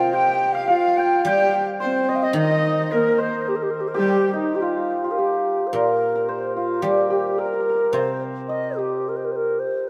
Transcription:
0.00 0.69 C3 medium
0.00 0.14 F4 medium
0.00 1.57 A#4 medium
0.00 1.67 C5 medium
0.00 1.83 D#5 medium
0.00 0.54 F5 medium
0.00 0.12 G5 loud
0.00 0.12 G5 medium
0.00 0.13 G5 medium
0.12 0.72 G4 medium
0.12 0.54 G5 medium
0.12 0.99 G5 loud
0.12 0.54 G5 loud
0.53 0.68 F5 medium
0.53 0.67 F5 medium
0.53 0.69 F5 medium
0.68 1.26 F4 medium
0.68 2.90 F5 medium
0.68 0.99 F5 loud
0.68 0.98 F5 medium
0.97 1.25 G5 medium
0.97 1.24 G5 loud
0.97 1.26 G5 medium
1.25 2.91 G3 medium
1.25 1.66 G4 medium
1.25 1.64 G5 loud
1.25 1.55 G5 loud
1.25 3.34 G5 loud
1.80 2.36 C4 medium
1.80 3.18 C5 medium
1.80 2.06 C5 medium
1.80 2.11 C5 medium
2.09 2.22 D#5 medium
2.09 2.17 D#5 medium
2.16 2.25 F5 medium
2.22 2.36 D#5 medium
2.22 2.37 D#5 medium
2.33 4.02 D#3 medium
2.33 2.94 D#4 medium
2.33 2.44 D#5 medium
2.33 2.93 D#5 medium
2.38 2.68 D#5 loud
2.44 2.51 D#5 medium
2.51 2.58 D#5 medium
2.59 2.65 D#5 medium
2.66 2.72 D#5 medium
2.72 2.80 D#5 medium
2.80 5.18 D#5 medium
2.91 3.48 A#3 medium
2.91 3.21 A#4 medium
2.91 3.22 A#4 medium
2.91 5.74 A#4 medium
3.18 5.82 C5 medium
3.18 3.47 C5 medium
3.18 3.50 C5 medium
3.48 3.58 G4 medium
3.56 3.64 A#4 medium
3.63 3.72 G4 medium
3.71 3.82 A#4 medium
3.81 3.90 G4 medium
3.88 4.00 A#4 medium
3.94 4.30 G3 medium
3.94 4.55 G4 medium
3.94 4.31 G4 loud
3.99 4.33 G4 medium
4.33 7.95 D#4 medium
4.33 4.57 D#4 medium
4.55 4.62 G4 medium
4.55 5.18 G4 medium
4.61 5.13 F4 medium
4.61 5.04 F4 medium
5.04 6.56 F4 medium
5.11 5.19 A#4 medium
5.18 5.69 G4 medium
5.18 6.82 G4 medium
5.67 5.75 C5 medium
5.73 7.39 A#2 medium
5.73 6.31 A#4 medium
5.73 6.15 A#4 medium
6.16 7.38 A#4 medium
6.28 7.93 C5 medium
6.28 6.55 C5 medium
6.56 6.84 F4 medium
6.56 9.89 F4 medium
6.82 8.50 G3 medium
6.82 7.10 G4 medium
7.10 8.78 G4 medium
7.10 7.41 G4 medium
7.38 7.45 A#4 medium
7.38 7.94 A#4 medium
7.46 7.53 A#4 soft
7.54 7.60 A#4 medium
7.60 7.69 A#4 medium
7.69 7.75 A#4 medium
7.75 7.84 A#4 soft
7.84 9.89 A#4 medium
7.92 9.62 C3 medium
7.92 8.23 C5 medium
7.92 9.89 C5 medium
8.48 8.79 D#5 medium
8.48 9.89 D#5 medium
8.78 9.10 G4 medium
8.78 9.89 G4 soft
9.09 9.18 A#4 medium
9.16 9.26 C5 medium
9.25 9.33 A#4 medium
9.32 9.37 C5 medium
9.36 9.61 A#4 medium
9.59 9.89 C5 medium

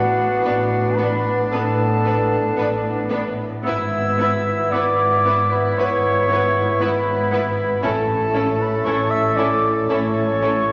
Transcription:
0.00 0.32 A1 medium
0.00 0.32 A2 medium
0.00 0.93 A2 medium
0.00 3.38 B3 soft
0.00 3.49 B3 medium
0.00 3.34 D4 soft
0.00 0.40 E4 medium
0.00 0.97 F#4 medium
0.00 0.99 F#5 medium
0.43 1.39 A1 medium
0.43 1.40 A2 medium
0.43 0.53 B3 soft
0.43 3.49 D4 medium
0.43 0.53 D4 soft
0.43 0.52 B4 soft
0.96 1.06 B3 soft
0.96 1.08 D4 soft
0.96 1.32 B4 medium
0.96 1.06 B4 soft
0.96 1.33 B5 medium
1.51 2.46 A1 medium
1.51 2.46 A2 medium
1.51 1.60 B3 soft
1.51 1.62 D4 soft
1.51 3.07 A4 medium
1.51 1.60 B4 soft
1.51 3.07 A5 medium
2.04 2.12 B3 soft
2.04 2.15 D4 soft
2.04 2.13 B4 soft
2.56 3.52 A1 medium
2.56 3.52 A2 medium
2.56 2.64 B3 soft
2.56 2.66 B4 soft
2.61 2.69 D4 soft
3.09 3.17 B3 soft
3.09 3.20 D4 soft
3.09 3.17 B4 soft
3.63 4.60 G#1 medium
3.63 4.61 G#2 medium
3.63 3.71 B3 soft
3.63 7.80 B3 medium
3.63 7.85 B3 medium
3.63 7.80 E4 medium
3.63 7.80 E4 soft
3.63 3.75 E4 medium
3.63 3.74 B4 soft
3.63 4.72 E5 medium
3.63 4.74 E6 medium
4.17 4.25 B3 soft
4.17 4.28 E4 soft
4.17 4.28 B4 soft
4.71 5.66 G#1 medium
4.71 5.66 G#2 medium
4.71 4.80 B3 soft
4.71 4.82 E4 soft
4.71 4.82 B4 soft
4.71 5.52 D5 medium
4.71 5.54 D6 medium
5.25 5.33 B3 soft
5.25 5.35 E4 soft
5.25 5.34 B4 soft
5.50 5.79 B4 medium
5.50 5.80 B5 medium
5.77 6.69 G#1 medium
5.77 6.69 G#2 medium
5.77 5.85 B3 soft
5.77 5.87 E4 soft
5.77 5.87 B4 soft
5.77 6.80 C#5 medium
5.77 6.84 C#6 medium
6.29 6.37 B3 soft
6.29 6.38 E4 soft
6.29 6.41 B4 soft
6.81 7.72 G#1 medium
6.81 7.72 G#2 medium
6.81 6.89 B3 soft
6.81 6.89 E4 soft
6.81 7.86 B4 medium
6.81 6.90 B4 soft
6.81 7.84 B5 medium
7.32 7.40 B3 soft
7.32 7.41 E4 soft
7.32 7.41 B4 soft
7.82 8.74 A1 medium
7.82 8.74 A2 medium
7.82 9.34 A2 medium
7.82 10.72 A3 medium
7.82 10.72 C#4 soft
7.82 7.91 C#4 soft
7.82 10.72 E4 medium
7.82 7.91 E4 medium
7.82 10.72 A4 soft
7.82 7.92 A4 medium
7.82 8.62 A4 medium
7.82 8.63 A5 medium
8.33 8.42 C#4 soft
8.33 8.41 E4 soft
8.33 8.43 A4 soft
8.60 8.88 B4 medium
8.60 8.86 B5 medium
8.84 9.78 A1 medium
8.84 9.77 A2 medium
8.84 8.94 C#4 soft
8.84 8.94 E4 soft
8.84 8.95 A4 soft
8.84 9.12 C#5 medium
8.84 9.12 C#6 medium
9.10 9.38 E5 medium
9.10 9.35 E6 medium
9.36 9.46 C#4 soft
9.36 9.45 E4 soft
9.36 9.46 A4 soft
9.36 9.71 D5 medium
9.36 9.70 D6 medium
9.88 10.72 A1 medium
9.88 9.98 C#4 soft
9.88 9.99 E4 soft
9.88 9.97 A4 soft
9.88 10.72 C#5 medium
9.88 10.72 C#6 medium
10.41 10.49 C#4 soft
10.41 10.50 E4 soft
10.41 10.51 A4 soft

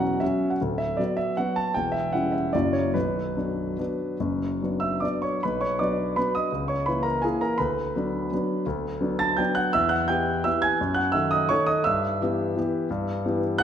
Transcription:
0.00 0.24 E1 soft
0.00 0.23 E2 soft
0.00 0.17 F#3 soft
0.00 0.18 C#4 soft
0.00 0.18 F#4 soft
0.00 0.20 F#5 medium
0.00 0.24 A#5 medium
0.20 0.57 F#3 soft
0.20 0.57 C#4 soft
0.20 0.57 F#4 soft
0.20 0.50 E5 medium
0.50 0.60 F#5 medium
0.61 0.98 D1 soft
0.61 0.98 D2 soft
0.78 0.98 E5 medium
0.97 1.34 F#3 soft
0.97 1.35 B3 soft
0.97 1.34 F#4 soft
0.97 1.18 D5 medium
1.17 1.37 E5 medium
1.37 1.72 F#3 soft
1.37 1.73 B3 soft
1.37 1.73 F#4 soft
1.37 1.57 F#5 medium
1.56 1.75 A5 medium
1.74 2.12 E1 soft
1.74 2.13 E2 soft
1.74 1.94 G5 medium
1.92 2.12 E5 medium
2.13 2.50 G3 soft
2.13 2.50 C#4 soft
2.13 2.50 E4 soft
2.13 2.33 F#5 medium
2.32 2.53 E5 medium
2.53 2.94 F#1 soft
2.53 2.94 F#2 soft
2.53 2.91 F#3 soft
2.53 2.92 A#3 soft
2.53 2.92 E4 soft
2.53 2.74 D5 medium
2.73 2.94 C#5 medium
2.94 3.35 B0 soft
2.94 3.35 B1 soft
2.94 5.03 B4 medium
3.37 3.76 F#3 soft
3.37 3.76 B3 soft
3.37 3.76 D4 soft
3.79 4.16 F#3 soft
3.79 4.17 B3 soft
3.79 4.17 D4 soft
4.20 4.60 F#1 soft
4.20 4.60 F#2 soft
4.62 5.00 F#3 soft
4.62 5.00 B3 soft
4.62 5.00 D4 soft
4.80 5.01 E5 soft
4.80 5.02 E6 medium
5.00 5.39 F#3 soft
5.00 5.39 B3 soft
5.00 5.40 D4 soft
5.00 5.22 D5 soft
5.00 5.23 D6 medium
5.22 5.42 C#5 soft
5.22 5.43 C#6 medium
5.43 5.79 B1 soft
5.43 5.61 B4 medium
5.43 5.61 B5 medium
5.61 5.78 C#5 soft
5.61 5.79 C#6 medium
5.79 6.13 F#3 soft
5.79 6.13 B3 soft
5.79 6.14 D4 soft
5.79 6.14 D5 soft
5.79 6.16 D6 medium
6.16 6.49 F#3 soft
6.16 6.49 B3 soft
6.16 6.50 D4 soft
6.16 6.34 B4 medium
6.16 6.35 B5 medium
6.35 6.68 D#5 soft
6.35 6.70 D#6 medium
6.52 6.86 C#2 soft
6.68 6.86 C#5 soft
6.68 6.87 C#6 medium
6.86 7.21 E3 soft
6.86 7.21 A#3 soft
6.86 7.21 E4 soft
6.86 7.04 B4 soft
6.86 7.05 B5 medium
7.03 7.22 A#4 medium
7.03 7.23 A#5 medium
7.22 7.56 E3 soft
7.22 7.56 A#3 soft
7.22 7.56 E4 soft
7.22 7.41 G#4 medium
7.22 7.41 G#5 medium
7.41 7.58 A#4 medium
7.41 7.59 A#5 medium
7.58 7.94 D2 soft
7.58 9.17 B4 medium
7.58 9.20 B5 medium
7.96 8.29 F#3 soft
7.96 8.29 B3 soft
7.96 8.29 D4 soft
8.32 8.65 F#3 soft
8.32 8.65 B3 soft
8.32 8.65 D4 soft
8.66 9.01 D2 medium
9.01 9.35 F#3 soft
9.01 9.35 B3 soft
9.01 9.35 D4 soft
9.19 9.38 A5 medium
9.19 9.38 A6 medium
9.37 9.71 F#3 soft
9.37 9.71 B3 soft
9.37 9.71 D4 soft
9.37 9.56 G5 medium
9.37 9.56 G6 medium
9.55 9.73 F#5 medium
9.55 9.74 F#6 medium
9.73 10.09 E2 medium
9.73 9.91 E5 medium
9.73 9.92 E6 medium
9.89 10.08 F#5 medium
9.89 10.09 F#6 medium
10.08 10.43 E3 soft
10.08 10.43 B3 soft
10.08 10.43 G4 soft
10.08 10.43 G5 medium
10.08 10.45 G6 medium
10.44 10.77 E3 soft
10.44 10.78 B3 soft
10.44 10.78 G4 soft
10.44 10.62 E5 medium
10.44 10.63 E6 medium
10.62 10.96 G#5 medium
10.62 10.97 G#6 medium
10.81 11.15 F#2 medium
10.94 11.13 F#5 soft
10.94 11.14 F#6 medium
11.12 11.47 D#3 soft
11.12 11.47 A3 soft
11.12 11.48 A4 soft
11.12 11.31 E5 medium
11.12 11.32 E6 medium
11.31 11.49 D#5 medium
11.31 11.50 D#6 medium
11.49 11.83 D#3 soft
11.49 11.83 A3 soft
11.49 11.83 A4 soft
11.49 11.67 C#5 medium
11.49 11.68 C#6 medium
11.66 11.85 D#5 medium
11.66 11.85 D#6 medium
11.84 12.20 G2 medium
11.84 13.39 E5 medium
11.84 13.42 E6 medium
12.21 12.54 E3 soft
12.21 12.54 B3 soft
12.21 12.54 G4 soft
12.56 12.88 E3 soft
12.56 12.88 B3 soft
12.56 12.89 G4 soft
12.90 13.24 G2 medium
13.25 13.58 E3 soft
13.25 13.57 B3 soft
13.25 13.58 G4 soft
13.58 13.63 F#6 loud

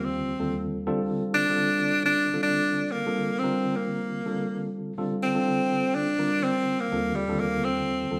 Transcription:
0.00 0.33 D#2 medium
0.00 0.33 D3 medium
0.00 0.33 G3 medium
0.00 0.33 C4 medium
0.00 0.33 F4 medium
0.00 0.33 G4 medium
0.04 0.63 C4 medium
0.39 0.88 D#2 medium
0.39 0.86 D3 medium
0.39 0.86 G3 medium
0.39 0.86 C4 medium
0.39 0.86 F4 medium
0.39 0.86 A4 medium
0.87 1.43 D3 medium
0.87 1.43 G3 medium
0.87 1.43 C4 medium
0.87 1.44 F4 medium
0.87 1.43 A4 medium
1.34 2.04 D4 loud
1.49 2.26 D3 medium
1.49 2.26 G3 medium
1.49 2.26 C4 medium
1.49 2.27 F4 medium
1.49 2.27 A4 medium
2.06 2.41 D4 loud
2.34 3.00 D3 medium
2.34 3.00 G3 medium
2.34 3.00 C4 medium
2.34 3.00 F4 medium
2.34 3.00 A4 medium
2.43 2.93 D4 loud
2.91 3.40 A#3 medium
3.06 3.39 D3 medium
3.06 3.40 G3 medium
3.06 3.40 C4 medium
3.06 3.40 F4 medium
3.06 3.40 A4 medium
3.39 3.77 C4 medium
3.43 4.20 D3 medium
3.43 4.20 G3 medium
3.43 4.20 C4 medium
3.43 4.20 F4 medium
3.43 4.20 A#4 medium
3.76 4.73 A#3 medium
4.26 4.92 D3 medium
4.26 4.93 G3 medium
4.26 4.93 C4 medium
4.26 4.93 F4 medium
4.26 4.93 A4 medium
4.98 5.32 D3 medium
4.98 5.32 G3 medium
4.98 5.32 C4 medium
4.98 5.32 F4 medium
4.98 5.32 A4 medium
5.23 5.97 C4 medium
5.35 6.12 D3 medium
5.35 6.12 G3 medium
5.35 6.12 C4 medium
5.35 6.12 F4 medium
5.35 6.12 A4 medium
5.95 6.45 D4 loud
6.19 6.85 D3 medium
6.19 6.86 G3 medium
6.19 6.86 C4 medium
6.19 6.86 F4 medium
6.19 6.86 A#4 medium
6.44 6.82 C4 medium
6.80 7.17 A#3 medium
6.92 7.25 D#2 medium
6.92 7.25 D3 medium
6.92 7.25 G3 medium
6.92 7.25 C4 medium
6.92 7.25 F4 medium
6.92 7.25 A4 medium
7.15 7.41 G3 medium
7.28 8.05 D#2 medium
7.28 8.05 D3 medium
7.28 8.05 G3 medium
7.28 8.05 C4 medium
7.28 8.06 F4 medium
7.28 8.06 A4 medium
7.39 7.66 A#3 medium
7.64 8.20 C4 medium
8.11 8.20 D#2 medium
8.11 8.20 D3 medium
8.11 8.20 G3 medium
8.11 8.20 C4 medium
8.11 8.20 F4 medium
8.11 8.20 A4 medium

